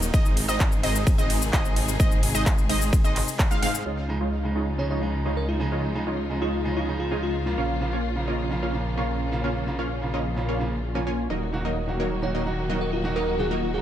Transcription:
Already playing: D#1 D#3 F#3 A#3 D#4 F#4 A#4 D#5
0.02 shaker
0.14 G#1 C3 G#3 C4 D#4 G#4 C5 D#5, kick, ride, shaker
0.26 shaker
0.37 open hi-hat, ride
0.49 G#1 G#3 C4 D#4 C5 D#5, shaker
0.60 kick, clap, ride, shaker
0.72 shaker
0.83 G#1 G#3 C4 D#4 C5 D#5, open hi-hat, ride
0.95 shaker
1.07 kick, ride, shaker
1.18 G#1 G#3 C4 D#4 C5 D#5, shaker
1.30 open hi-hat, ride
1.42 shaker
1.53 G#1 G#3 C4 D#4 C5 D#5, kick, clap, ride, shaker
1.65 shaker
1.76 open hi-hat, ride
1.88 shaker
2.00 G#1 G#3 C4 D#4 C5 D#5, kick, ride, shaker
2.12 shaker
2.23 open hi-hat, ride
2.35 G#1 G#3 C4 D#4 C5 D#5, shaker
2.46 kick, clap, ride, shaker
2.58 shaker
2.69 G#1 G#3 C4 D#4 C5 D#5, open hi-hat, ride
2.82 shaker
2.93 kick, ride, shaker
3.04 G#1 G#3 C4 D#4 C5 D#5, shaker
3.16 clap, open hi-hat, ride
3.28 shaker
3.39 kick, clap, ride, shaker
3.51 G#1 G#3 C4 D#4 C5 F5, shaker
3.63 G#2 G#3 C4 D#4 C5 F5, open hi-hat, ride
3.75 shaker
3.86 C#2 C#3 F3 G#3 D#4 F4 C#5 D#5
4.08 C#3 F3 G#3 D#4
4.21 G#3 D#4 F4 C#5 D#5
4.43 C#3 F3 G#3 D#4
4.56 G#3 D#4 F4 C#5 D#5
4.78 C#3 F3 G#3 D#4 C#5
4.90 G#3 D#4 F4 C#5 D#5
5.01 C#3 F3 G#3 D#4
5.25 C#3 F3 G#3 D#4 F4 C#5 D#5
5.37 A#4
5.49 F4
5.60 C#3 F3 G#3 D#4
5.72 G#3 D#4 F4 C#5 D#5
5.94 C#3 F3 G#3 D#4
6.07 G#3 D#4 F4 C#5 D#5
6.29 C#3 F3 G#3 D#4
6.42 G#3 D#4 F4 C#5 D#5
6.64 C#3 F3 G#3 D#4
6.77 G#3 D#4 F4 C#5 D#5
6.88 C#3 F3 G#3 D#4
7.00 F4
7.11 C#3 F3 G#3 D#4 F4 C#5 D#5
7.23 F4
7.46 C#3 F3 A#3 F4
7.58 A#1 A#2 C#3 A#3 C#4 F4 C#5 F5
7.81 C#3 F3 A#3 F4
7.93 A#3 C#4 F4 C#5 F5
8.15 C#3 F3 A#3 F4
8.28 A#3 C#4 F4 C#5 D#5
8.50 C#3 F3 A#3 F4
8.63 A#3 C#4 F4 C#5 F5
8.74 C#3 F3 A#3 F4
8.97 C#3 F3 A#3 C#4 F4 C#5 F5
9.32 C#3 F3 A#3 F4
9.44 A#3 C#4 F4 C#5 F5
9.67 C#3 F3 A#3 F4
9.79 A#3 C#4 F4 C#5 F5
10.01 C#3 F3 A#3 F4
10.14 A#3 C#4 F4 C#5 D#5
10.36 C#3 F3 A#3 F4
10.49 A#3 C#4 F4 C#5 F5
10.60 C#3 F3 A#3 F4
10.94 C#3 F3 A#3 C#4 F4 C#5 G#5
11.07 A#3 C#4 F4 C#5 G#5
11.30 D#1 D#3 F#3 A#3 D#4 F#4 A#4 D#5
11.53 D#3 F#3 A#3 F#4
11.65 F#3 A#3 D#4 A#4 D#5
11.88 D#3 F#3 A#3 F#4
12.00 F#3 A#3 D#4 A#4 C#5
12.22 D#3 F#3 A#3 F#4 C#5
12.35 F#3 A#3 D#4 A#4 C#5 D#5
12.46 D#3 F#3 A#3 F#4
12.69 D#3 F#3 A#3 D#4 F#4 A#4 D#5
12.81 A#4
12.93 F4
13.04 D#3 F#3 A#3 F#4
13.16 F#3 A#3 D#4 A#4 D#5
13.39 D#3 F#3 A#3 F#4 G#4
13.51 F#3 A#3 D#4 F4 A#4 D#5
13.62 F4
13.74 D#3 F#3 A#3 F#4 G#4

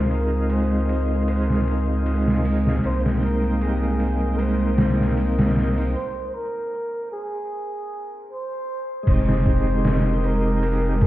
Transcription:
Already playing: C#2 G#3 C4 D#4 F4 A#4 F5 G#5 C6
0.11 A#4, ride
0.50 C5, ride
0.89 ride
1.28 C5, ride
1.50 snare
1.68 ride
2.06 ride
2.28 snare
2.45 open hi-hat
2.67 snare
2.79 A#3 C4
2.84 C2 G#3 D#4 C5 G5 C6 D#6, ride
3.06 snare
3.23 A#4, ride
3.44 ride
3.61 G#4, ride
3.69 G4
3.79 G#4
4.00 ride
4.39 C5, ride
4.78 snare, ride
5.00 snare
5.17 open hi-hat
5.38 snare, ride
5.57 snare
5.78 open hi-hat
5.95 C5
6.28 C5
6.34 A#4
7.12 G#4
8.32 C5
9.03 F1 G#3 C4 A#4
9.07 G#3 D#4 C5 F5 C6 D#6, kick, crash, ride
9.11 G4
9.29 snare
9.46 kick, ride
9.67 ride
9.85 snare, ride
10.24 A#4, ride
10.63 ride
11.01 G#4, kick, ride

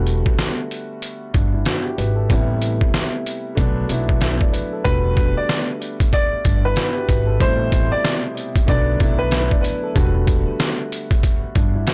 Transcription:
Already playing: E1 D3 G3 A3 B3 F#4
0.07 closed hi-hat
0.26 kick
0.39 snare, closed hi-hat
0.71 closed hi-hat
1.02 closed hi-hat
1.33 G1 D4, kick, closed hi-hat
1.54 E4
1.65 F#4, snare, closed hi-hat
1.85 G4
1.98 G#1 B4, closed hi-hat
2.16 A4
2.29 A1 C3 G3 A3 B3 E4, kick, closed hi-hat
2.62 closed hi-hat
2.81 kick
2.94 snare, closed hi-hat
3.26 closed hi-hat
3.55 B1 D3 F#3 A3 B3 D4, kick, closed hi-hat
3.88 B1 D3 F#3 A3 B3 E4, closed hi-hat
4.09 kick
4.21 E5, snare, closed hi-hat
4.41 D5, kick
4.53 B4, closed hi-hat
4.73 A4
4.84 E1 D3 G3 A3 B3 F#4 B4, kick, closed hi-hat
5.17 kick, closed hi-hat
5.37 D5
5.49 snare, closed hi-hat
5.82 closed hi-hat
6.00 kick, closed hi-hat
6.13 D5, kick, closed hi-hat
6.44 G1 D4, kick, closed hi-hat
6.64 E4 B4
6.76 F#4, snare, closed hi-hat
6.96 G4
7.09 G#1 B4, kick, closed hi-hat
7.26 A4
7.40 A1 B2 C3 G3 A3 E4 C5, kick, closed hi-hat
7.72 kick, closed hi-hat
7.92 D5
8.04 snare, closed hi-hat
8.37 closed hi-hat
8.56 kick, closed hi-hat
8.66 B1 D3 F#3 A3 B3 D4 D5, kick, closed hi-hat
8.99 B1 D3 F#3 A3 B3 E4, kick, closed hi-hat
9.19 B4
9.31 E5, snare, closed hi-hat
9.51 D5, kick
9.63 B4, closed hi-hat
9.83 A4
9.95 E1 D3 G3 A3 B3 F#4, kick, closed hi-hat
10.27 kick, closed hi-hat
10.60 snare, closed hi-hat
10.92 closed hi-hat
11.11 kick, closed hi-hat
11.23 kick, closed hi-hat
11.55 G1 D4, kick, closed hi-hat
11.75 E4
11.87 F#4, snare, closed hi-hat

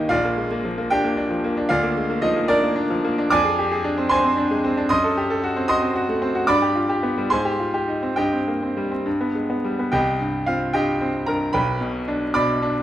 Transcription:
Already playing: G1 D#3 A#3 D4 D#4 G4 G#4 A#4 D#5 G5 G#5 A#5
0.09 A#1 F4 D5 F5
0.24 A#3
0.37 G#3
0.51 A#3
0.65 F3
0.78 A#3
0.90 D4 G4 G5
1.04 A#3
1.17 D4
1.30 F3
1.44 A#3
1.57 D4
1.69 D2 F4 D5 F5
1.83 A#3
1.97 G#3
2.10 A#3
2.22 F3 D#4 D#5
2.36 A#3
2.48 D4 A#4 D5
2.63 A#3
2.76 D4
2.90 F3
3.04 A#3
3.18 D4
3.30 F2 D5 G#5 D6
3.45 G#4
3.59 G4
3.72 G#4
3.84 D4
3.98 C4
4.09 D4 C5 G#5 C6
4.24 C4
4.37 D4
4.51 G#3
4.64 C4
4.77 D4
4.89 F#2 D#5 C6 D#6
5.04 A4
5.17 G4
5.30 A4
5.43 F#4
5.56 C4
5.68 F#4 D#5 C6 D#6
5.82 C4
5.96 F#4
6.09 A3
6.22 C4
6.35 F#4
6.47 G2 D5 B5 D6
6.62 G4
6.75 F4
6.89 G4
7.03 B3
7.18 G3
7.30 G#2 C5 G#5 C6
7.45 G4
7.60 F4
7.74 G4
7.88 D#4
8.03 C4
8.16 G2 G4 D#5 G5
8.32 C4
8.47 A#3
8.62 C4
8.77 G3
8.91 C4
9.06 G2
9.21 B3
9.35 G#3
9.50 B3
9.64 G3
9.79 B3
9.92 C2 G4 D#5 G5
10.20 G2
10.46 C4 F4 F5
10.73 G2 G4 D#5 G5
11.01 C4
11.26 G2 A#4 A#5
11.53 B1 B4 G5 B5
11.81 B2
12.08 D4
12.34 B2 D5 B5 D6
12.62 D4

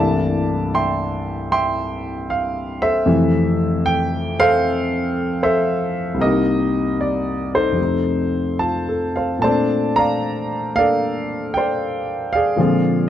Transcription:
Already playing: C2 G2 E3 A3 A#3 D4 D5 E5 A5
0.74 E5 G5 C6
1.52 E5 G5 C6
2.30 F5
2.82 A4 C5 E5
3.06 F2 C3 E3 A3
3.86 G5
4.40 A4 C5 F5
5.43 A4 C5 E5
6.14 C2 C3
6.20 A#3 G4 A#4 D#5
6.25 D#4
7.01 D5
7.54 D#4 A4 C5
7.72 F2 C3
7.79 A3 D#4
8.59 F4 A5
8.89 A4
9.16 C5 F5
9.39 A#2 A3 A5
9.44 C4 C5 D5
9.49 D4
9.96 D5 F5 A#5
10.75 A#3 D4 A4 D5 F5
11.54 C5 D5 G5
12.33 G#4 D5 F5
12.56 A#2 D3 F3 G#3 C4
12.61 F4

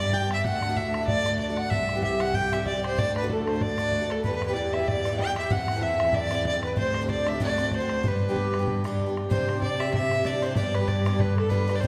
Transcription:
Already playing: G2 D5
0.00 G3 B3 D4 G4, bodhran
0.13 G5, bodhran
0.22 B3 D4 G4
0.31 E5, bodhran
0.44 D2 D3 A3 D4 F#4 F#5, bodhran
0.62 F#5, bodhran
0.69 D2 A2 D3 A3 D4 F#4
0.77 E5, bodhran
0.88 E5
0.94 bodhran
0.99 F#4 E5
1.03 D3 A3 D4
1.07 D5, bodhran
1.25 D3 A3 D4 F#4, bodhran
1.39 D5, bodhran
1.48 D3 A3 D4 F#4
1.57 F#5, bodhran
1.70 C2 E3 G3 C4 G4 E5, bodhran
1.89 F#5, bodhran
1.95 C3 E3 G3 C4 G4
2.02 E5, bodhran
2.20 F#5, bodhran
2.28 G3 C4 G4
2.34 G5, bodhran
2.47 F#5
2.52 E3 G3 C4 G4 E5, bodhran
2.66 D5, bodhran
2.73 G3 C4 G4
2.83 C5, bodhran
2.96 D2 D3 A3 D4 F#4 D5, bodhran
3.16 B4, bodhran
3.22 D2 A2 D3 A3 D4 F#4
3.30 A4, bodhran
3.47 C5, bodhran
3.53 D3 A3 D4 F#4
3.61 D5, bodhran
3.77 D3 A3 D4 F#4, bodhran
3.92 bodhran
4.00 D3 A3 D4 F#4
4.07 A4 B4, bodhran
4.11 A4
4.24 E2 E3 G3 B3 G4 B4, bodhran
4.36 B4
4.42 bodhran
4.46 G3 B3 G4 B4
4.51 E3 D5
4.55 D5, bodhran
4.73 E5, bodhran
4.80 G3 B3 G4
4.87 D5, bodhran
5.05 E3 G3 B3 G4, bodhran
5.18 G5, bodhran
5.27 G3 B3 G4
5.36 E5, bodhran
5.50 E2 E3 A3 C4 E4 F#5, bodhran
5.68 bodhran
5.74 E3 A3 C4 E4
5.81 E5, bodhran
6.00 bodhran
6.05 A3 C4 E4
6.13 D5, bodhran
6.31 E3 A3 C4 E4, bodhran
6.45 D5, bodhran
6.53 A3 C4 E4
6.63 B4, bodhran
6.76 D2 D3 G3 C4 D4 C5, bodhran
6.94 bodhran
7.01 D2 A2 D3 G3 C4 D4
7.09 D5, bodhran
7.27 E5, bodhran
7.32 D3 G3 C4 D4
7.40 D2 A2 D3 A3 C4 F#4 D5, bodhran
7.57 D3 A3 C4 F#4, bodhran
7.67 D5
7.71 C5, bodhran
7.76 F#4 C5
7.82 D3 A3 C4
7.89 bodhran
8.03 G2 G3 B3 D4 G4 B4, bodhran
8.07 B4
8.29 G3 B3 D4 G4
8.36 bodhran
8.54 bodhran
8.59 B3 D4 G4
8.68 bodhran
8.84 G3 B3 D4 G4, bodhran
9.00 bodhran
9.06 B3 D4 G4
9.17 bodhran
9.30 C3 E3 G3 D4 G4 C5, bodhran
9.49 bodhran
9.55 G3 D4 G4
9.62 D5, bodhran
9.78 E3 G3 D4 E5, bodhran
9.82 G4
9.88 G3 D4
9.94 E5, bodhran
10.11 bodhran
10.24 E3 G3 D4 G4 D5, bodhran
10.42 E3 G3 D4 G4 C5, bodhran
10.56 G2 G3 B3 D4 G4 D5, bodhran
10.74 B4, bodhran
10.81 B3 D4 G4
10.88 D5, bodhran
11.05 G3 B3 D4 G4, bodhran
11.13 B3 D4 G4
11.20 B4, bodhran
11.37 A4, bodhran
11.49 G3 B3 D4 B4, bodhran
11.53 G4
11.68 G3 B3 D4 G4, bodhran
11.76 D5
11.80 F3 A3 C4 C5, bodhran

